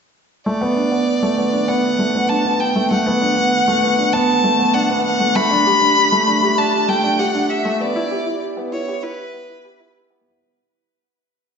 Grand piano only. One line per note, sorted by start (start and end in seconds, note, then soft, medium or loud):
0.46 0.61 A3 medium
0.61 0.70 B3 medium
0.77 0.91 D4 medium
0.92 1.01 B3 medium
1.23 1.37 A3 medium
1.38 1.53 B3 medium
1.53 1.68 D4 medium
1.68 1.83 B3 medium
1.99 2.14 A3 medium
2.14 2.23 B3 medium
2.30 2.44 D4 medium
2.45 2.60 B3 medium
2.76 2.90 A3 medium
2.91 3.06 A3 medium
3.06 3.15 B3 medium
3.22 3.36 D4 medium
3.37 3.46 B3 medium
3.68 3.82 A3 medium
3.83 3.98 B3 medium
3.98 4.13 D4 medium
4.14 4.28 B3 medium
4.44 4.59 A3 medium
4.59 4.68 B3 medium
4.74 4.89 D4 medium
4.90 5.04 B3 medium
5.20 5.34 A3 medium
5.35 5.50 A3 medium
5.51 5.60 D4 medium
5.66 5.81 G4 medium
5.81 5.90 D4 medium
6.12 6.27 A3 medium
6.27 6.42 D4 medium
6.43 6.57 G4 medium
6.58 6.73 D4 medium
6.88 7.03 A3 medium
7.04 7.13 D4 medium
7.19 7.34 G4 medium
7.34 7.49 D4 medium
7.65 7.80 A3 medium
7.80 7.95 B3 medium
7.96 8.05 E4 medium
8.11 8.26 G4 medium
8.27 8.35 E4 medium
8.57 8.72 B3 medium
8.73 8.87 E4 medium
8.88 9.03 G4 medium
9.03 9.18 E4 medium
9.34 9.48 B3 medium
9.49 9.58 E4 medium
9.64 9.79 G4 medium
9.80 9.94 E4 medium
10.10 10.25 B3 medium